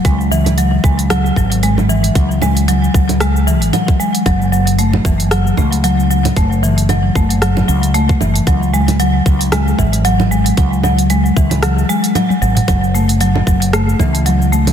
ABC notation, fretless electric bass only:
X:1
M:4/4
L:1/16
Q:"Swing 16ths" 1/4=114
K:F#m
V:1 name="Fretless electric bass" clef=bass
C,,4- C,, z C,,3 z G,,,4- G,,, z | C,,4- C,, z C,,4- C,, G,,, z4 | F,,,4- F,,, z F,,,3 z C,,4- C,, z | F,,,4- F,,, z F,,,3 z C,,3 z F,,, z |
C,,4- C,, z C,,3 z G,,,4- G,,, z | C,,4- C,, z C,,3 z4 z G,,, z | F,,,4- F,,, z F,,,3 z C,,4- C,, z |]